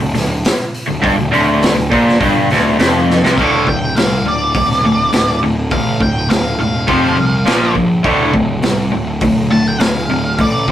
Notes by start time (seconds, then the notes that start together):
0.00 D1 D2
0.15 D1 D2, snare, open hi-hat
0.45 snare, open hi-hat
0.74 open hi-hat
0.88 D1 D2
1.02 G1 G2, kick, open hi-hat
1.18 D1 D2
1.32 D1 D2, open hi-hat
1.63 snare, open hi-hat
1.76 D1 D2
1.92 A#1 A#2, kick, open hi-hat
2.09 snare
2.20 G1 G2, kick, open hi-hat
2.50 D1 D2, snare, open hi-hat
2.79 F1 F2, snare, open hi-hat
3.10 snare
3.22 C2 C3, snare
3.38 D1 D2 A2 D3 F5, kick, open hi-hat
3.67 D1 D2 A2 G5, kick
3.96 C2 D2 A2 F5, snare, open hi-hat
4.24 D1 D2 A2
4.28 D5
4.54 D1 D2 A2, kick, open hi-hat
4.71 snare
4.83 D1 D2 A2
5.12 D1 D2 A2, snare, open hi-hat
5.41 D1 D2 A2
5.71 A1 D2 A2 F5, kick, open hi-hat
6.00 D1 D2 A2 G5, kick
6.30 D1 D2 A2 F5, snare, open hi-hat
6.59 E1 D2 A2 F5
6.87 F1 F2 C3 F3, kick, open hi-hat
7.17 C2 F2 C3
7.46 A#1 A#2 F3 A#3, snare, open hi-hat
7.74 A#1 A#2 F3, kick
8.03 D1 D2 A2 D3, kick, open hi-hat
8.33 D1 D2 A2, kick
8.62 C2 D2 A2, snare, open hi-hat
8.92 D1 D2 A2
9.21 D1 D2 A2, kick, open hi-hat
9.50 D1 D2 A2 A5
9.68 G5
9.80 D1 D2 A2 F5, snare, open hi-hat
10.09 D1 D2 A2
10.38 A1 D2 A2 D5, kick, open hi-hat
10.67 D1 D2, kick